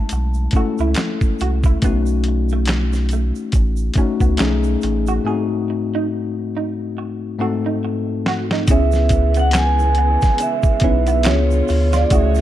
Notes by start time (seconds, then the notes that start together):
Already playing: G#3 A3 C#4 E4 A5
0.09 B1, muted clean electric guitar stroke, closed hi-hat, shaker
0.34 shaker
0.51 A3 C#4, kick, closed hi-hat, shaker
0.56 E4 F#4 A4
0.78 C#2 E4, shaker
0.94 finger snap, snare, clap, closed hi-hat, shaker
0.99 muted clean electric guitar stroke
1.21 kick, shaker
1.39 C2 F#4, closed hi-hat, shaker
1.63 E4, kick, shaker
1.82 B1 A3 B3 C#4 D#4 F#4, kick, closed hi-hat, shaker
2.06 shaker
2.24 closed hi-hat
2.28 muted clean electric guitar stroke
2.49 A3, shaker
2.65 finger snap, snare, clap, closed hi-hat, shaker
2.93 snare, shaker
3.09 closed hi-hat, shaker
3.13 A3
3.35 shaker
3.52 A1, muted clean electric guitar stroke, kick, closed hi-hat, shaker
3.77 shaker
3.94 A3 C#4, kick, closed hi-hat, shaker
3.98 C#4 D#4 F#4
4.20 C#2 B3, kick, shaker
4.37 B1 A3 C#4 D#4, finger snap, snare, clap, closed hi-hat, shaker
4.41 G#4
4.64 shaker
4.81 A1, muted clean electric guitar stroke, closed hi-hat, shaker
5.07 F#4, shaker
5.24 G#2 A3 C4 D#4 F#4 G#4
5.70 muted clean electric guitar stroke
5.95 D#4
6.57 D#4
6.98 muted clean electric guitar stroke
7.38 G#2 A3 C4 D#4 F#4 A4
7.66 D#4
7.85 muted clean electric guitar stroke
8.26 F#4, snare
8.51 D#4, snare
8.67 C#2 C#3 E3 G#3 B3 C#4 E4 G#4 E5, kick, closed hi-hat, shaker
8.71 C#4
8.92 snare, shaker
9.09 kick, closed hi-hat, shaker
9.13 muted clean electric guitar stroke
9.34 B3, closed hi-hat, shaker
9.39 F#5
9.51 finger snap, snare, clap, closed hi-hat, shaker
9.57 G#5
9.79 shaker
9.95 B3, closed hi-hat
10.21 kick, snare, closed hi-hat, shaker
10.38 muted clean electric guitar stroke, closed hi-hat, shaker
10.42 E5
10.63 kick, shaker
10.80 B1 B3 D#4 E4, kick, closed hi-hat
10.84 C#4 B4
11.07 B3 E5, closed hi-hat, shaker
11.23 C#2 D3 B3 C#4 D4 F4 C#5, finger snap, snare, clap, closed hi-hat, shaker
11.27 G4
11.34 G#4
11.51 shaker
11.68 D2, muted clean electric guitar stroke, open hi-hat, shaker
11.93 F4 D5, snare, closed hi-hat, shaker
12.10 C#2 E3 A3 C#4 E4 F#4 G#4 E5, kick, closed hi-hat, shaker
12.35 snare, shaker